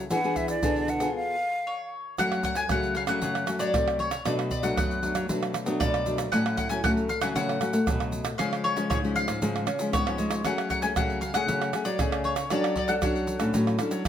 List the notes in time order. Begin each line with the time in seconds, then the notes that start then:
0.10 E3 B3 D4 G#4 F#5, pandeiro, shaker, surdo
0.24 B3 D4 G#4, pandeiro, shaker
0.36 E5, pandeiro, shaker, surdo
0.48 D5, pandeiro, shaker
0.63 B2 D3 B3 D4 G#4, pandeiro, shaker, surdo
0.76 pandeiro, shaker
0.88 F#5, pandeiro, shaker
1.00 B3 F4 G#4, pandeiro, shaker
1.16 F5
1.67 C#5
2.18 F#2 F#3 A3 C#4 F#5, pandeiro, tamborim, shaker, surdo
2.32 pandeiro, tamborim, shaker
2.43 F#5, pandeiro, shaker, surdo
2.55 G#5, pandeiro, shaker
2.69 C#3 F#3 A3 C#4 F#5, pandeiro, tamborim, shaker, surdo
2.83 pandeiro, shaker
2.95 F5, pandeiro
3.07 C#3 F#3 A3 C#4 F#5, pandeiro, tamborim, shaker
3.22 F#2 C#3, pandeiro, shaker, surdo
3.35 pandeiro, tamborim, shaker
3.47 F#3 A3 C#4, pandeiro, tamborim, shaker
3.59 F#3 D5, pandeiro, shaker
3.73 C3 F#3 A3, pandeiro, tamborim, shaker, surdo
3.88 pandeiro, tamborim, shaker
3.99 C#5, pandeiro
4.11 pandeiro, tamborim, shaker
4.25 B2 F#3 A3 D4 D5, pandeiro, tamborim, shaker, surdo
4.39 pandeiro, tamborim, shaker
4.51 D5, pandeiro, shaker, surdo
4.63 F#3 A3 D4 F#5, pandeiro, shaker
4.77 F#2 B3 F#5, pandeiro, tamborim, shaker, surdo
4.91 pandeiro, shaker
5.03 F#3 A3 D4, pandeiro, shaker
5.15 F#3, pandeiro, tamborim, shaker
5.29 B2 F#3 A3 D4, pandeiro, shaker, surdo
5.43 pandeiro, tamborim, shaker
5.54 pandeiro, tamborim, shaker
5.66 F#3 A3 B3 D4, pandeiro, shaker
5.80 F#2 B2 D5, pandeiro, tamborim, shaker, surdo
5.94 pandeiro, tamborim, shaker
6.06 F#3 A3 D4, pandeiro, shaker
6.18 pandeiro, tamborim, shaker
6.32 A2 F#3 A3 C#4 F#5, pandeiro, tamborim, shaker, surdo
6.46 pandeiro, tamborim, shaker
6.57 F#5, pandeiro, shaker, surdo
6.69 F#3 A3 C#4 G#5, pandeiro, shaker
6.84 A2 F#3 A3 C#4 F#5, pandeiro, tamborim, shaker, surdo
6.97 pandeiro, shaker
7.09 F5, pandeiro, shaker
7.21 C#3 F#3 A3 C#4 F#5, pandeiro, tamborim, shaker
7.36 A2 C#3 F#5, pandeiro, shaker, surdo
7.49 pandeiro, tamborim, shaker
7.61 F#3 A3 C#4, pandeiro, tamborim, shaker
7.73 A3, pandeiro, shaker
7.87 A2 B2 F#3 A3 C#4, pandeiro, tamborim, shaker, surdo
8.00 pandeiro, tamborim, shaker
8.12 pandeiro, shaker
8.25 pandeiro, tamborim, shaker
8.38 C#3 F3 G#3 C#4 F5, pandeiro, tamborim, shaker, surdo
8.53 pandeiro, tamborim, shaker
8.64 C#5, pandeiro
8.77 F3 G#3 C#4, pandeiro, shaker
8.90 G#2 C#3 C#5, pandeiro, tamborim, shaker, surdo
9.04 F3 G#3 C#4, pandeiro, shaker
9.16 F5, pandeiro, shaker
9.28 G#2, pandeiro, tamborim, shaker
9.42 G#2 C#3 F3 G#3 C#4, pandeiro, shaker, surdo
9.56 pandeiro, tamborim, shaker
9.67 C#4, pandeiro, tamborim, shaker
9.79 F3 G#3 C#4, pandeiro, shaker
9.93 G#2 B3 C#5, pandeiro, tamborim, shaker, surdo
10.07 F3 G#3 C#4, pandeiro, tamborim, shaker
10.18 G#3, pandeiro, shaker
10.31 pandeiro, tamborim, shaker
10.45 F#3 A3 C#4 G#4 F#5, pandeiro, tamborim, shaker, surdo
10.58 pandeiro, tamborim, shaker
10.70 F#5, pandeiro, shaker, surdo
10.82 A3 C#4 G#4 G#5, pandeiro, shaker
10.96 C#3 F#3 A3 C#4 G#4 F#5, pandeiro, tamborim, shaker, surdo
11.10 pandeiro, shaker
11.21 F5, pandeiro, shaker
11.34 C#3 A3 C#4 G#4 F#5, pandeiro, tamborim, shaker
11.48 C#3 F#3, pandeiro, shaker, surdo
11.62 pandeiro, tamborim, shaker
11.73 A3 C#4 G#4, pandeiro, tamborim, shaker
11.85 F#3 D5, pandeiro, shaker
11.99 C#3 A3 C#4 G#4, pandeiro, tamborim, shaker, surdo
12.12 pandeiro, tamborim, shaker
12.24 C#5, pandeiro
12.36 pandeiro, tamborim, shaker
12.50 F#3 C#4 D4 A4 D5, pandeiro, tamborim, shaker, surdo
12.64 pandeiro, tamborim, shaker
12.76 D5, pandeiro, surdo
12.88 C#4 D4 A4 F#5, pandeiro, shaker
13.02 F#3 C#4 D4 A4 F#5, pandeiro, tamborim, shaker, surdo
13.16 pandeiro, shaker
13.27 pandeiro, shaker
13.40 A2 C#4 D4 A4, pandeiro, tamborim, shaker
13.54 A2 F#3, pandeiro, shaker, surdo
13.67 pandeiro, tamborim, shaker
13.79 C#4 D4 A4, pandeiro, tamborim, shaker
13.91 F#3, pandeiro, shaker
14.05 pandeiro, tamborim, shaker, surdo